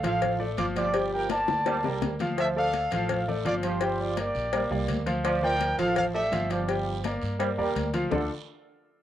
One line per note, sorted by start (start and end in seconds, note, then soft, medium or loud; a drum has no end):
0.03 0.54 A1 medium
0.03 0.46 F3 medium
0.03 0.33 F3 loud
0.03 0.33 F4 loud
0.03 0.38 A4 medium
0.03 0.38 F5 loud
0.03 0.34 F5 medium
0.03 cowbell medium
0.03 high conga soft
0.03 short guiro medium
0.22 cowbell loud
0.22 high conga soft
0.22 low conga medium
0.22 long guiro medium
0.40 0.55 A3 medium
0.40 0.55 A4 medium
0.40 0.55 D5 medium
0.40 high conga soft
0.57 1.42 G1 medium
0.57 0.88 F3 medium
0.57 0.88 F4 medium
0.57 0.66 F4 medium
0.57 0.66 D5 loud
0.57 0.88 F5 medium
0.57 cowbell medium
0.57 high conga medium
0.57 short guiro medium
0.76 1.31 F3 medium
0.76 1.10 G4 medium
0.76 1.10 D5 medium
0.76 cowbell medium
0.76 high conga medium
0.76 short guiro medium
0.94 1.23 G3 medium
0.94 1.24 G4 medium
0.94 1.24 G5 medium
0.94 cowbell loud
0.94 high conga soft
0.94 long guiro medium
1.13 1.30 A#4 medium
1.13 1.29 G5 medium
1.13 high conga soft
1.30 1.60 A#3 medium
1.30 1.60 A#4 medium
1.30 1.60 D5 medium
1.30 1.99 D5 medium
1.30 1.98 A5 loud
1.30 cowbell medium
1.30 high bongo medium
1.30 high conga loud
1.30 short guiro medium
1.48 1.81 D2 medium
1.48 high bongo loud
1.48 short guiro medium
1.66 1.76 G3 loud
1.66 1.81 A#3 medium
1.66 1.81 A#4 medium
1.66 1.81 D5 medium
1.66 cowbell loud
1.66 high bongo loud
1.66 high conga soft
1.66 long guiro medium
1.83 2.00 C2 medium
1.83 2.13 G3 medium
1.83 2.14 A#3 medium
1.83 2.14 A#4 medium
1.83 2.14 D5 medium
1.83 low bongo medium
1.83 high conga soft
2.01 2.85 D2 medium
2.01 cowbell medium
2.01 low bongo medium
2.01 high conga medium
2.01 short guiro medium
2.19 2.50 F3 medium
2.19 2.50 F4 medium
2.19 2.50 F5 loud
2.19 cowbell medium
2.19 low bongo medium
2.19 high conga medium
2.19 short guiro medium
2.37 2.67 F3 loud
2.37 2.47 A4 medium
2.37 2.48 E5 loud
2.37 cowbell loud
2.37 high conga soft
2.37 long guiro medium
2.56 2.85 A3 medium
2.56 2.85 A4 medium
2.56 2.89 A4 medium
2.56 2.86 D5 medium
2.56 2.90 F5 loud
2.56 high conga soft
2.73 cowbell medium
2.73 high conga loud
2.73 short guiro medium
2.91 3.42 A1 medium
2.91 3.34 F3 medium
2.91 3.22 F3 loud
2.91 3.22 F4 loud
2.91 3.25 A4 medium
2.91 3.26 F5 loud
2.91 3.22 F5 medium
2.91 cowbell medium
2.91 high conga soft
2.91 short guiro medium
3.09 cowbell loud
3.09 high conga soft
3.09 low conga medium
3.09 long guiro medium
3.28 3.42 A3 medium
3.28 3.43 A4 medium
3.28 3.43 D5 medium
3.28 high conga soft
3.28 low conga medium
3.45 4.29 G1 loud
3.45 3.75 F3 medium
3.45 3.75 F4 medium
3.45 3.54 F4 medium
3.45 3.54 D5 loud
3.45 3.75 F5 medium
3.45 cowbell medium
3.45 high conga medium
3.45 short guiro medium
3.63 4.19 F3 medium
3.63 3.97 G4 medium
3.63 3.97 C5 medium
3.63 cowbell medium
3.63 short guiro medium
3.81 4.11 G3 medium
3.81 4.11 G4 medium
3.81 4.11 G5 medium
3.81 cowbell loud
3.81 high conga soft
3.81 long guiro medium
3.99 4.18 F4 medium
3.99 4.18 D5 medium
3.99 high conga soft
4.17 4.46 A#3 medium
4.17 4.86 G4 medium
4.17 4.46 A#4 medium
4.17 4.46 D5 medium
4.17 4.86 D5 loud
4.17 cowbell medium
4.17 high conga loud
4.17 short guiro medium
4.35 4.68 A#1 medium
4.35 short guiro medium
4.52 4.62 G3 medium
4.52 4.68 A#3 medium
4.52 4.68 A#4 medium
4.52 4.68 D5 medium
4.52 cowbell loud
4.52 high conga soft
4.52 long guiro medium
4.70 4.87 C2 medium
4.70 5.00 G3 medium
4.70 5.00 A#3 medium
4.70 5.00 A#4 medium
4.70 5.01 D5 medium
4.70 high conga soft
4.88 5.72 D2 loud
4.88 cowbell medium
4.88 high conga medium
4.88 short guiro medium
5.06 5.36 F3 loud
5.06 5.36 F4 loud
5.06 5.36 F5 medium
5.06 cowbell medium
5.06 short guiro medium
5.24 5.54 F3 loud
5.24 5.42 F4 medium
5.24 5.42 D5 medium
5.24 cowbell loud
5.24 long guiro medium
5.42 5.72 F3 medium
5.42 5.72 F4 medium
5.42 5.77 A#4 loud
5.42 5.73 D5 medium
5.42 5.77 G5 loud
5.42 high conga soft
5.60 cowbell medium
5.60 high conga loud
5.60 short guiro medium
5.78 6.28 A1 medium
5.78 6.21 F3 medium
5.78 6.08 F3 loud
5.78 6.08 F4 loud
5.78 5.96 A4 medium
5.78 5.96 F5 loud
5.78 6.09 F5 loud
5.78 cowbell medium
5.78 high conga soft
5.78 short guiro medium
5.96 6.05 A4 medium
5.96 6.05 F5 loud
5.96 cowbell loud
5.96 high conga soft
5.96 low conga loud
5.96 long guiro medium
6.14 6.29 A3 medium
6.14 6.48 G4 medium
6.14 6.29 A4 medium
6.14 6.30 D5 medium
6.14 6.48 E5 loud
6.14 high conga soft
6.32 7.16 G1 loud
6.32 6.62 F3 medium
6.32 6.62 F4 medium
6.32 6.62 F5 medium
6.32 cowbell medium
6.32 high conga medium
6.32 short guiro medium
6.50 7.05 F3 medium
6.50 6.87 G4 medium
6.50 6.87 D5 medium
6.50 cowbell medium
6.50 short guiro medium
6.68 6.98 G3 medium
6.68 6.98 G4 medium
6.68 6.98 G5 medium
6.68 cowbell medium
6.68 high conga soft
6.68 long guiro medium
6.87 high conga soft
7.04 7.34 A#3 medium
7.04 7.34 A#4 medium
7.04 7.34 D5 medium
7.04 cowbell medium
7.04 high conga loud
7.04 short guiro medium
7.22 7.56 G2 medium
7.22 short guiro medium
7.39 7.49 G3 loud
7.39 7.54 A#3 medium
7.39 7.55 A#4 medium
7.39 7.55 D5 medium
7.39 cowbell loud
7.39 high conga soft
7.39 long guiro medium
7.57 7.75 E2 medium
7.57 7.87 G3 medium
7.57 7.88 A#3 medium
7.57 7.88 A#4 medium
7.57 7.88 D5 medium
7.57 high conga soft
7.75 8.07 D2 medium
7.75 cowbell medium
7.75 high conga medium
7.75 short guiro medium
7.93 8.09 F3 medium
7.93 8.09 F4 loud
7.93 8.09 F5 medium
7.93 cowbell medium
7.93 short guiro medium
8.11 8.28 D2 medium
8.11 8.24 D3 medium
8.11 8.28 D3 medium
8.11 8.28 A3 medium
8.11 8.28 D4 medium
8.11 8.29 F4 medium
8.11 8.28 A4 medium
8.11 8.29 A4 medium
8.11 8.29 D5 medium
8.11 low bongo loud
8.11 low conga loud
8.11 long guiro loud